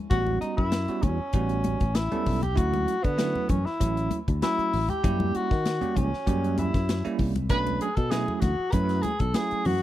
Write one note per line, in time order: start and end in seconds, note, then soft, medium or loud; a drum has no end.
0.10 0.38 A1 loud
0.10 0.59 G3 medium
0.10 0.59 B3 medium
0.10 0.59 C#4 medium
0.10 0.39 F#4 loud
0.10 0.59 F#4 medium
0.10 kick loud
0.10 closed hi-hat medium
0.26 high conga medium
0.41 0.57 D#4 medium
0.41 closed hi-hat medium
0.57 0.85 F#2 medium
0.57 1.04 E4 medium
0.57 kick medium
0.72 snare loud
0.72 closed hi-hat medium
0.88 1.17 G3 medium
0.88 1.17 B3 medium
0.88 1.17 C#4 medium
0.88 1.17 F#4 medium
0.88 muted fretless electric bass stroke soft
0.88 closed hi-hat soft
1.03 1.18 E2 medium
1.03 1.97 C#4 medium
1.03 kick medium
1.03 closed hi-hat medium
1.03 low conga medium
1.19 muted fretless electric bass stroke soft
1.33 1.76 A1 medium
1.33 1.82 G3 medium
1.33 1.82 B3 medium
1.33 1.82 C#4 medium
1.33 1.82 F#4 medium
1.33 kick medium
1.33 closed hi-hat medium
1.49 closed hi-hat soft
1.64 closed hi-hat medium
1.64 high conga medium
1.80 2.08 A1 medium
1.80 kick medium
1.80 closed hi-hat soft
1.95 2.44 E4 medium
1.95 snare loud
1.95 closed hi-hat medium
2.12 2.40 G3 medium
2.12 2.40 B3 medium
2.12 2.40 C#4 medium
2.12 2.40 A4 medium
2.12 muted fretless electric bass stroke soft
2.12 closed hi-hat soft
2.12 high conga medium
2.26 2.57 B1 medium
2.26 kick medium
2.26 open hi-hat medium
2.26 low conga medium
2.42 2.59 G4 loud
2.42 closed hi-hat soft
2.42 high conga medium
2.56 2.85 D2 medium
2.56 2.94 F#3 medium
2.56 2.95 A3 medium
2.56 2.95 C#4 medium
2.56 2.94 E4 medium
2.56 3.05 F#4 loud
2.56 kick medium
2.56 closed hi-hat medium
2.74 closed hi-hat soft
2.74 high conga medium
2.88 closed hi-hat medium
3.03 3.32 D3 medium
3.03 3.51 B3 medium
3.03 kick medium
3.03 closed hi-hat soft
3.17 3.56 F#3 medium
3.17 3.56 A3 medium
3.17 3.56 C#4 medium
3.17 3.56 E4 medium
3.17 snare medium
3.17 closed hi-hat medium
3.36 low conga medium
3.49 3.64 F#2 medium
3.49 3.67 C#4 medium
3.49 kick medium
3.49 closed hi-hat medium
3.49 low conga medium
3.66 4.15 E4 medium
3.66 muted fretless electric bass stroke soft
3.66 snare soft
3.80 4.08 A1 medium
3.80 4.18 F#3 medium
3.80 4.19 A3 medium
3.80 4.18 C#4 medium
3.80 4.18 E4 medium
3.80 kick medium
3.80 closed hi-hat medium
3.97 closed hi-hat soft
4.11 closed hi-hat medium
4.11 high conga medium
4.28 4.41 D2 medium
4.28 kick medium
4.28 closed hi-hat soft
4.42 4.80 F#3 medium
4.42 4.80 A3 medium
4.42 4.80 C#4 medium
4.42 4.91 E4 medium
4.42 4.80 F#4 medium
4.42 snare medium
4.42 closed hi-hat medium
4.58 muted fretless electric bass stroke soft
4.58 closed hi-hat soft
4.73 4.88 A1 medium
4.73 open hi-hat medium
4.89 5.37 G4 medium
4.89 muted fretless electric bass stroke soft
4.89 closed hi-hat soft
4.89 high conga medium
5.04 5.31 F#2 loud
5.04 5.52 G3 medium
5.04 5.52 A#3 medium
5.04 5.52 C#4 medium
5.04 5.51 E4 medium
5.04 kick loud
5.04 closed hi-hat medium
5.20 high conga medium
5.35 5.99 F#4 loud
5.35 muted fretless electric bass stroke soft
5.35 closed hi-hat medium
5.51 5.78 D#3 medium
5.51 kick medium
5.51 snare soft
5.66 snare loud
5.66 closed hi-hat medium
5.81 6.09 G3 medium
5.81 6.09 A#3 medium
5.81 6.09 C#4 medium
5.81 6.09 G4 medium
5.81 muted fretless electric bass stroke soft
5.81 closed hi-hat soft
5.81 low conga medium
5.96 6.11 C#2 medium
5.96 6.58 C#4 medium
5.96 kick medium
5.96 closed hi-hat medium
5.96 low conga medium
6.13 muted fretless electric bass stroke soft
6.13 snare soft
6.27 6.69 F#2 medium
6.27 6.74 G3 medium
6.27 6.75 A#3 medium
6.27 6.75 C#4 medium
6.27 6.74 G4 medium
6.27 kick medium
6.27 closed hi-hat medium
6.44 closed hi-hat soft
6.58 7.16 E4 medium
6.58 closed hi-hat medium
6.58 high conga medium
6.74 7.02 F#2 medium
6.74 kick medium
6.74 snare soft
6.74 closed hi-hat soft
6.89 snare loud
6.89 closed hi-hat medium
7.05 7.33 G3 medium
7.05 7.33 A#3 medium
7.05 7.33 C#4 medium
7.05 7.33 E4 medium
7.05 muted fretless electric bass stroke soft
7.05 closed hi-hat soft
7.19 7.50 C2 medium
7.19 kick medium
7.19 open hi-hat medium
7.19 low conga medium
7.35 closed hi-hat soft
7.35 high conga medium
7.49 7.77 B1 loud
7.49 7.88 F#3 medium
7.49 7.88 A3 medium
7.49 7.88 C#4 medium
7.49 7.87 D4 medium
7.49 7.79 B4 loud
7.49 kick loud
7.49 closed hi-hat medium
7.66 closed hi-hat soft
7.66 high conga medium
7.81 7.97 G#4 medium
7.81 closed hi-hat medium
7.96 8.25 B2 medium
7.96 8.12 A4 medium
7.96 kick medium
7.96 closed hi-hat soft
8.11 8.49 F#3 medium
8.11 8.49 A3 medium
8.11 8.49 C#4 medium
8.11 8.49 E4 medium
8.11 8.35 G#4 medium
8.11 snare loud
8.11 closed hi-hat medium
8.28 low conga medium
8.35 8.42 G#4 medium
8.41 8.57 D2 medium
8.41 8.74 F#4 medium
8.41 kick medium
8.41 snare soft
8.41 closed hi-hat medium
8.41 low conga medium
8.59 muted fretless electric bass stroke soft
8.72 9.00 F#2 medium
8.72 9.11 F#3 medium
8.72 9.11 A3 medium
8.72 9.11 C#4 medium
8.72 9.11 E4 medium
8.72 9.04 B4 loud
8.72 kick medium
8.72 closed hi-hat medium
8.89 snare soft
8.89 closed hi-hat soft
9.03 9.22 G#4 medium
9.03 closed hi-hat medium
9.03 high conga medium
9.19 9.33 B1 medium
9.19 9.37 A4 medium
9.19 kick medium
9.19 closed hi-hat soft
9.34 9.73 F#3 medium
9.34 9.72 A3 medium
9.34 9.73 C#4 medium
9.34 9.73 E4 medium
9.34 9.68 G#4 loud
9.34 snare loud
9.34 closed hi-hat medium
9.51 muted fretless electric bass stroke soft
9.51 closed hi-hat soft
9.65 9.80 F#2 medium
9.65 9.82 F#4 medium
9.65 open hi-hat medium
9.65 low conga medium